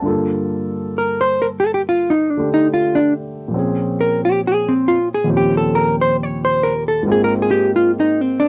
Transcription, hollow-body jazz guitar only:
0.98 1.23 A#4 medium
1.21 1.49 C5 medium
1.42 1.46 A#4 medium
1.60 1.74 A4 medium
1.74 1.81 G4 medium
1.89 2.12 F4 medium
2.10 2.31 D#4 medium
2.31 2.48 D4 medium
2.54 2.67 D#4 medium
2.74 2.98 F4 medium
2.95 3.13 D4 medium
4.01 4.20 A#4 medium
4.25 4.40 G4 medium
4.47 4.73 G#4 medium
4.68 4.98 C4 soft
4.88 5.08 F4 medium
5.14 5.29 G#4 medium
5.37 5.57 G4 medium
5.57 5.86 A4 medium
5.75 5.95 A#4 medium
6.01 6.16 C5 medium
6.23 6.44 C#5 medium
6.45 6.73 C5 medium
6.63 6.83 A#4 medium
6.88 7.03 A4 medium
7.12 7.24 G#4 medium
7.24 7.33 A#4 medium
7.42 7.66 G#4 medium
7.51 7.71 G4 medium
7.76 7.91 F4 medium
8.00 8.21 D#4 medium
8.21 8.48 C4 medium
8.40 8.48 D4 medium

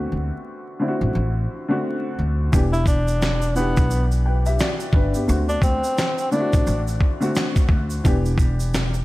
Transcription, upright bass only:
0.12 0.29 D2 medium
1.01 1.13 A1 medium
1.15 1.45 A1 medium
2.19 2.48 D2 medium
2.53 3.73 E1 loud
3.77 4.56 B1 medium
4.93 5.11 G1 medium
5.29 5.59 D2 loud
5.62 5.80 D2 medium
6.54 6.65 A1 medium
6.67 6.97 A1 loud
7.69 7.99 D2 medium
8.05 9.05 E1 loud

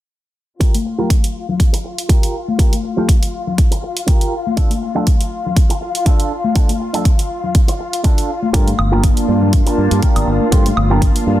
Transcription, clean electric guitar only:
0.60 0.74 F4 loud
0.60 0.74 G4 medium
0.60 0.75 A#4 loud
0.85 muted clean electric guitar stroke soft
0.98 1.10 F4 medium
0.98 1.10 G4 medium
0.98 1.10 A#4 medium
1.23 muted clean electric guitar stroke soft
1.73 muted clean electric guitar stroke medium
1.84 muted clean electric guitar stroke soft
2.09 2.34 F4 medium
2.09 2.34 G4 medium
2.09 2.35 A#4 medium
2.58 2.72 F4 loud
2.58 2.73 G4 loud
2.58 2.73 A#4 loud
2.83 muted clean electric guitar stroke soft
2.97 3.08 F4 medium
2.97 3.09 G4 medium
2.97 3.09 A4 medium
3.22 muted clean electric guitar stroke soft
3.71 muted clean electric guitar stroke loud
3.82 muted clean electric guitar stroke soft
4.07 4.32 F4 medium
4.07 4.33 G4 medium
4.07 4.33 A#4 medium
4.57 4.71 D4 loud
4.57 4.71 F4 loud
4.57 4.71 A4 loud
4.81 muted clean electric guitar stroke soft
4.95 5.07 D4 medium
4.95 5.07 F4 medium
4.95 5.07 A4 medium
5.20 muted clean electric guitar stroke soft
5.69 muted clean electric guitar stroke loud
5.81 muted clean electric guitar stroke soft
6.05 6.31 D4 medium
6.05 6.31 F4 medium
6.05 6.31 A4 medium
6.55 6.69 D4 loud
6.55 6.69 F4 medium
6.55 6.70 A4 loud
6.80 muted clean electric guitar stroke soft
6.93 7.05 D4 medium
6.93 7.05 F4 medium
6.93 7.06 A4 medium
7.18 muted clean electric guitar stroke soft
7.68 muted clean electric guitar stroke loud
7.79 muted clean electric guitar stroke soft
8.04 8.29 D4 medium
8.04 8.29 F4 medium
8.04 8.30 A4 medium
8.53 8.67 F4 loud
8.53 8.68 G4 loud
8.53 8.68 A#4 loud
8.78 muted clean electric guitar stroke soft
8.92 9.03 F4 medium
8.92 9.04 G4 medium
8.92 9.04 A#4 medium
9.17 muted clean electric guitar stroke soft
9.66 muted clean electric guitar stroke loud
9.77 muted clean electric guitar stroke soft
10.02 10.27 F4 medium
10.02 10.28 G4 medium
10.02 10.28 A#4 medium
10.52 10.66 F4 loud
10.52 10.66 G4 loud
10.52 10.66 C5 loud
10.76 muted clean electric guitar stroke soft
10.90 11.02 F4 medium
10.90 11.02 G4 medium
10.90 11.02 A#4 medium
11.15 muted clean electric guitar stroke soft

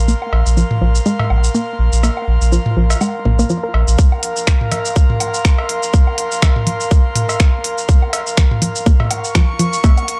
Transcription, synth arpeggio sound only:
0.08 0.14 A#3 medium
0.57 0.59 F3 medium
0.81 0.84 F3 medium
1.06 1.12 G#3 medium
1.55 1.57 A#3 medium
2.03 2.09 A#3 medium
2.52 2.55 F3 medium
2.77 2.79 F3 medium
3.01 3.07 G#3 medium
3.25 3.28 A#3 medium
3.39 3.42 A#3 loud
3.50 3.56 F3 medium
3.63 3.65 A#4 medium
3.98 4.05 A#3 medium
4.47 4.50 F3 medium
4.72 4.74 F3 medium
4.96 5.02 G#3 medium
5.45 5.47 A#3 medium
5.94 6.00 A#3 medium
6.42 6.45 F3 medium
6.67 6.69 F3 medium
6.91 6.97 G#3 medium
7.40 7.42 A#3 medium
7.89 7.95 A#3 medium
8.37 8.40 F3 medium
8.62 8.64 F3 medium
8.86 8.92 A#3 medium
9.35 9.37 F3 medium
9.59 9.62 F3 medium
9.84 9.90 A#3 medium

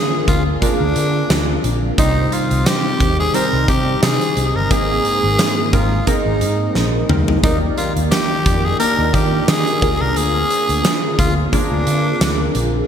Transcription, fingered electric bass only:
0.28 0.53 D2 medium
0.80 0.92 D2 loud
0.96 1.21 D3 loud
1.30 1.56 D2 loud
1.64 1.90 A#1 loud
1.98 2.24 C2 loud
2.51 2.62 C2 medium
3.00 3.26 D#2 medium
3.53 3.65 C2 medium
3.68 3.94 C3 medium
4.03 4.17 C3 loud
4.37 4.51 C2 medium
4.55 4.67 G1 medium
4.71 4.96 G#1 loud
5.24 5.35 G#1 medium
5.73 5.99 G#1 loud
6.26 6.43 G#1 medium
6.41 6.67 G#2 medium
6.75 7.01 A#1 loud
7.09 7.35 D2 medium
7.44 7.69 D#2 loud
7.96 8.08 D#2 medium
8.46 8.71 F2 medium
8.99 9.10 D#2 loud
9.14 9.39 D#3 loud
9.48 9.62 D#3 medium
9.82 9.96 D2 loud
10.01 10.13 C2 medium
10.16 10.42 D2 loud
10.69 10.81 D2 medium
11.19 11.44 D2 medium
11.72 11.83 D2 loud
11.87 12.12 D3 loud
12.21 12.47 D2 loud
12.55 12.81 A#1 loud

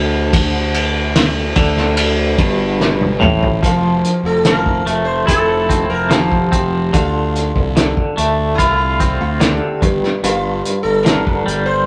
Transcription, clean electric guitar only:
0.00 1.55 D3 medium
1.56 2.38 D3 loud
2.38 3.20 G2 medium
3.20 3.61 A2 loud
3.63 4.45 F3 medium
4.46 6.09 F3 medium
4.86 6.93 A3 medium
5.27 6.92 E4 medium
5.69 6.51 C4 medium
6.10 6.93 F3 medium
6.52 6.93 C4 medium
6.93 7.75 D3 medium
7.76 9.39 D3 medium
8.17 9.82 A3 medium
8.58 9.82 F4 medium
9.00 9.82 C4 medium
9.40 9.82 D3 medium
9.82 10.22 G2 medium
10.24 11.86 G2 medium
11.05 11.86 D3 medium
11.46 11.86 G3 medium

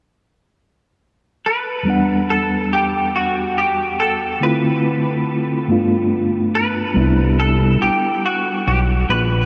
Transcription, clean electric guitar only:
1.46 2.30 B4 medium
2.30 2.73 A4 medium
2.73 3.15 G4 medium
3.16 3.58 F#4 medium
3.58 3.99 G4 medium
4.00 4.43 A4 medium
4.43 6.54 B4 medium
6.55 7.39 B4 medium
7.40 7.79 A4 medium
7.82 8.25 G4 medium
8.26 8.64 F#4 medium
8.68 8.79 G4 medium
9.10 9.45 B4 medium

